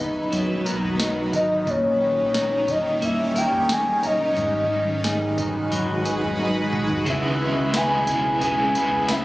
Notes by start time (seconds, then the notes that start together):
Already playing: D#3 F#3 B3 B4
0.00 A#1 D#4
0.32 F#3, floor tom, tambourine
0.66 B1 A#4, tambourine
0.83 floor tom
1.00 D#4, snare, tambourine
1.33 G#1 A#4 D#5, kick, tambourine
1.67 A#1 A#2 G3 C#4 C#5, kick, floor tom, tambourine
2.01 G4
2.18 A#1
2.34 A#4, snare, tambourine
2.68 G1 G4 D#5, kick, floor tom, tambourine
3.02 A#3 E5, floor tom, tambourine
3.35 A#1 A#4 G5, tambourine
3.52 floor tom
3.69 G#5, snare, tambourine
4.03 G1 A#4 D#5, tambourine
4.37 G#1 G#2 G#3 F#4 B4, kick, floor tom, tambourine
4.70 D#4
4.87 G#1
5.04 G#4, snare, tambourine
5.38 F#1 D#4, kick, floor tom, tambourine
5.72 F#3, floor tom, tambourine
6.05 G#1 G#4, tambourine
6.22 floor tom
6.39 D#4, high tom
6.73 B1 G#4, mid tom
6.90 floor tom
7.06 C#2 C#3 G#3 B3 E4 E5, kick, floor tom, tambourine
7.39 B3 E4
7.44 G#3
7.57 C#2
7.73 C#3 G#3 B3 E4 B4 G#5, snare, tambourine
8.06 B1 B3 E4, kick, floor tom, tambourine
8.11 G#3
8.40 C#3 G#3 B3 G#5, floor tom, tambourine
8.45 E4
8.74 C#2 B3 E4 B4, tambourine
8.78 G#3
8.91 floor tom
9.08 C#3 G#3 B3 E4 E5, snare, tambourine